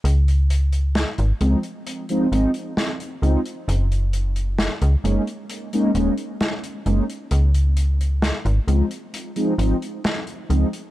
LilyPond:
<<
  \new Staff \with { instrumentName = "Analog polysynth" } { \time 4/4 \key des \major \tempo 4 = 66 r4. <f aes c' ees'>16 r8 <f aes c' ees'>16 <f aes c' ees'>16 r8. <f aes c' ees'>16 r16 | r4. <aes bes des' ees'>16 r8 <aes bes des' ees'>16 <aes bes des' ees'>16 r8. <aes bes des' ees'>16 r16 | r4. <f aes c' ees'>16 r8 <f aes c' ees'>16 <f aes c' ees'>16 r8. <f aes c' ees'>16 r16 | }
  \new Staff \with { instrumentName = "FM bass" } { \clef bass \time 4/4 \key des \major des,4 r16 aes,,16 des,16 r8. aes,,16 r8. des,16 r16 | ges,,4 r16 des,16 ges,,16 r8. ees,,16 r8. ges,,16 r16 | des,4 r16 aes,,16 des,16 r8. aes,,16 r8. des,16 r16 | }
  \new DrumStaff \with { instrumentName = "Drums" } \drummode { \time 4/4 hh16 hh16 hh16 hh16 <hh sn>16 hh16 hh16 hh16 hh16 hh16 hh16 hh16 <hh sn>16 hh16 hh16 hh16 | hh16 hh16 hh16 hh16 <hh sn>16 hh16 hh16 hh16 hh16 hh16 hh16 hh16 <hh sn>16 hh16 hh16 hh16 | hh16 hh16 hh16 hh16 <hh sn>16 hh16 hh16 hh16 hh16 hh16 hh16 hh16 <hh sn>16 hh16 hh16 hh16 | }
>>